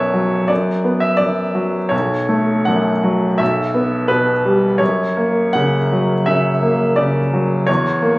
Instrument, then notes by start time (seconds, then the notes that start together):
grand piano
Already playing: B1 F#2 B3 C#5 D5 E5
0.14 F#3
0.48 F#2 D5
0.84 B3
1.00 E5
1.17 F#2 D5
1.55 F#3
1.89 B1 C#5
2.29 A3
2.65 F#2 F#5
3.04 F#3
3.38 B1 E5
3.74 B3
4.08 B2 B4
4.45 G3
4.78 F#2 C#5
5.17 A#3
5.53 C#3 F#5
5.92 F#3
6.26 C#3 E5
6.62 A#3
6.96 C#3 D5
7.34 F#3
7.67 E2 C#5
8.02 A#3